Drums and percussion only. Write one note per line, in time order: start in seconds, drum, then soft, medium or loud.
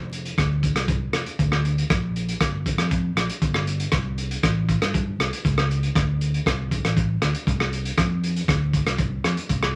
0.13 closed hi-hat soft
0.25 closed hi-hat soft
0.38 kick medium
0.38 cross-stick medium
0.38 closed hi-hat soft
0.63 kick medium
0.63 closed hi-hat soft
0.76 cross-stick medium
0.76 closed hi-hat soft
0.88 kick medium
0.88 closed hi-hat soft
1.13 cross-stick medium
1.13 closed hi-hat soft
1.26 closed hi-hat soft
1.39 kick medium
1.39 closed hi-hat soft
1.52 cross-stick medium
1.65 closed hi-hat soft
1.78 closed hi-hat soft
1.90 kick medium
1.90 cross-stick medium
1.90 closed hi-hat soft
2.16 closed hi-hat soft
2.29 closed hi-hat soft
2.41 kick medium
2.41 cross-stick medium
2.41 closed hi-hat soft
2.66 kick medium
2.66 closed hi-hat soft
2.78 cross-stick medium
2.78 closed hi-hat soft
2.91 kick medium
2.91 closed hi-hat soft
3.17 cross-stick medium
3.17 closed hi-hat soft
3.29 closed hi-hat medium
3.42 kick medium
3.42 closed hi-hat soft
3.54 cross-stick medium
3.67 closed hi-hat soft
3.80 closed hi-hat soft
3.92 kick medium
3.92 cross-stick medium
3.92 closed hi-hat soft
4.18 closed hi-hat soft
4.31 closed hi-hat soft
4.43 kick medium
4.43 cross-stick medium
4.43 closed hi-hat soft
4.69 kick medium
4.69 closed hi-hat soft
4.82 cross-stick medium
4.82 closed hi-hat soft
4.94 kick medium
4.94 closed hi-hat soft
5.20 cross-stick medium
5.20 closed hi-hat soft
5.33 closed hi-hat soft
5.45 kick medium
5.45 closed hi-hat soft
5.58 cross-stick medium
5.71 closed hi-hat soft
5.83 closed hi-hat soft
5.95 kick medium
5.95 cross-stick medium
5.95 closed hi-hat soft
6.21 closed hi-hat soft
6.34 closed hi-hat soft
6.46 kick medium
6.46 cross-stick medium
6.46 closed hi-hat soft
6.71 kick medium
6.71 closed hi-hat soft
6.85 cross-stick medium
6.85 closed hi-hat soft
6.97 kick medium
6.97 closed hi-hat soft
7.22 cross-stick medium
7.22 closed hi-hat soft
7.35 closed hi-hat soft
7.47 kick medium
7.47 closed hi-hat soft
7.60 cross-stick medium
7.73 closed hi-hat soft
7.85 closed hi-hat soft
7.98 kick medium
7.98 cross-stick medium
7.98 closed hi-hat soft
8.24 closed hi-hat soft
8.36 closed hi-hat soft
8.48 kick medium
8.48 cross-stick medium
8.48 closed hi-hat soft
8.73 kick medium
8.73 closed hi-hat soft
8.87 cross-stick medium
8.87 closed hi-hat soft
8.98 kick medium
8.98 closed hi-hat soft
9.24 cross-stick medium
9.24 closed hi-hat soft
9.37 closed hi-hat soft
9.49 kick medium
9.49 closed hi-hat soft
9.63 cross-stick medium